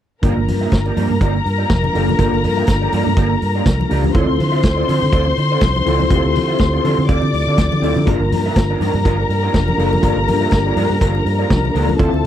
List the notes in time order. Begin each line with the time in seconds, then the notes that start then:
0.22 G1 A#3 D4 F4 G4 A#4 D5 A#5, kick, closed hi-hat, low conga
0.37 G1, muted clean electric guitar stroke
0.48 G2, muted clean electric guitar stroke, open hi-hat, high conga
0.61 A#3 F4 G4 E5
0.71 G1, muted clean electric guitar stroke, kick, snare, closed hi-hat, muted conga
0.86 A#3 F4 G4 D5, muted conga
0.96 G2 A#3 F4 G4 D5, open hi-hat, high conga
1.10 G2, muted clean electric guitar stroke, low conga
1.21 G1 A#3 F4 G4 D5, kick, closed hi-hat, muted conga
1.34 muted clean electric guitar stroke
1.44 G2, muted clean electric guitar stroke, open hi-hat
1.58 A#3 F4 G4 D5
1.69 F1, kick, snare, closed hi-hat, muted conga, high conga
1.83 muted clean electric guitar stroke, muted conga, high conga
1.93 F#1 A#3 D4 F4 G4 A4 D5, open hi-hat
2.07 muted clean electric guitar stroke, high conga, low conga
2.18 G1 A#3 D4 F4 G4 A#4 D5, kick, closed hi-hat, muted conga, low conga
2.33 G1, muted clean electric guitar stroke, muted conga
2.44 G2, muted clean electric guitar stroke, open hi-hat, high conga
2.57 A#3 F4 G4 E5
2.67 G1, muted clean electric guitar stroke, kick, snare, closed hi-hat, muted conga
2.82 A#3 F4 G4 D5, muted conga
2.92 G2 A#3 F4 G4 D5, open hi-hat, high conga
3.05 G2, muted clean electric guitar stroke, low conga
3.16 G1 A#3 F4 G4 D5, kick, closed hi-hat
3.30 muted clean electric guitar stroke
3.42 G2, muted clean electric guitar stroke, open hi-hat
3.55 A#3 F4 G4 D5
3.66 C2, kick, snare, closed hi-hat, muted conga, high conga
3.80 muted clean electric guitar stroke, high conga
3.89 C#2 A#3 D4 F4 G4 D5, open hi-hat
4.04 muted clean electric guitar stroke, high conga, low conga
4.14 D2 C4 E4 F4 A4 C5 D5 C6, kick, closed hi-hat, muted conga, low conga
4.28 D2, muted clean electric guitar stroke
4.39 D3, muted clean electric guitar stroke, open hi-hat, high conga
4.52 C4 F4 A4 E5
4.62 D2, muted clean electric guitar stroke, kick, snare, closed hi-hat
4.76 C4 F4 A4 D5
4.87 D3 C4 F4 A4 D5, open hi-hat, high conga
5.01 D3, muted clean electric guitar stroke, low conga
5.12 D2 C4 F4 A4 D5, kick, closed hi-hat
5.26 muted clean electric guitar stroke, muted conga
5.38 D3, muted clean electric guitar stroke, open hi-hat
5.51 C4 F4 A4 D5
5.61 C2, kick, snare, closed hi-hat, muted conga, high conga
5.76 muted clean electric guitar stroke, high conga
5.85 C#2 C4 E4 F4 A4 D5, open hi-hat
6.00 muted clean electric guitar stroke, high conga, low conga
6.10 D2 C4 E4 F4 G4 A4 D5, kick, closed hi-hat, low conga
6.18 A4
6.24 D2, muted clean electric guitar stroke
6.35 D3, muted clean electric guitar stroke, open hi-hat, high conga
6.48 C4 F4 A4 E5
6.58 D2, muted clean electric guitar stroke, kick, snare, closed hi-hat, muted conga
6.73 C4 F4 A4 D5
6.83 D3 C4 F4 A4 D5, open hi-hat, high conga
6.98 D3, muted clean electric guitar stroke, low conga
7.08 D2 C4 F4 A4 D5 D6, kick, closed hi-hat
7.21 D3, muted clean electric guitar stroke, muted conga
7.33 D2, muted clean electric guitar stroke, open hi-hat
7.47 D3 C4 F4 A4 D5
7.58 D2, muted clean electric guitar stroke, kick, snare, closed hi-hat, high conga
7.71 D3, muted clean electric guitar stroke, muted conga, high conga
7.82 D2 C4 E4 F4 A4 D5, open hi-hat
7.96 D3, muted clean electric guitar stroke, high conga, low conga
8.06 G1 F3 G3 A#3 D4 F4 G4 G#4 A#4 D5 A#5, kick, closed hi-hat, muted conga, low conga
8.14 A#4
8.20 G1, muted clean electric guitar stroke
8.31 G2, muted clean electric guitar stroke, open hi-hat, high conga
8.46 D4 F4 A#4 E5
8.56 G1, muted clean electric guitar stroke, kick, snare, closed hi-hat
8.70 D4 F4 A#4 D5, muted conga
8.80 G2 D4 F4 A#4 D5, open hi-hat, high conga
8.93 G2, muted clean electric guitar stroke, low conga
9.05 G1 D4 F4 A#4 D5, kick, closed hi-hat
9.19 muted clean electric guitar stroke
9.29 G2, muted clean electric guitar stroke, open hi-hat
9.43 D4 F4 A#4 D5
9.54 F1, muted clean electric guitar stroke, kick, snare, closed hi-hat, muted conga, high conga
9.68 muted clean electric guitar stroke, high conga
9.77 F#1 A#3 D4 F4 A4 A#4 D5, open hi-hat
9.92 muted clean electric guitar stroke, high conga, low conga
10.02 G1 A#3 D4 F4 A#4 D5, kick, closed hi-hat, muted conga, low conga
10.16 G1, muted clean electric guitar stroke
10.27 G2, muted clean electric guitar stroke, open hi-hat, high conga
10.41 D4 F4 A#4 E5
10.51 G1, muted clean electric guitar stroke, kick, snare, closed hi-hat, muted conga
10.66 D4 F4 A#4 D5
10.76 G2 D4 F4 A#4 D5, open hi-hat, high conga
10.90 G2, muted clean electric guitar stroke, snare, low conga
11.01 G1 D4 F4 A#4 D5, kick, closed hi-hat, muted conga
11.14 muted clean electric guitar stroke, muted conga
11.25 G2, muted clean electric guitar stroke, open hi-hat
11.39 D4 F4 A#4 D5
11.50 C2, muted clean electric guitar stroke, kick, snare, closed hi-hat, muted conga, high conga
11.64 muted clean electric guitar stroke, high conga
11.74 C#2 A#3 D4 F4 A4 A#4 D5, open hi-hat
11.88 muted clean electric guitar stroke, high conga, low conga
11.98 D2 D3 A3 C4 E4 F4 A4 D5 E5 A5, kick, closed hi-hat, low conga
12.12 D2, muted clean electric guitar stroke, muted conga
12.23 muted clean electric guitar stroke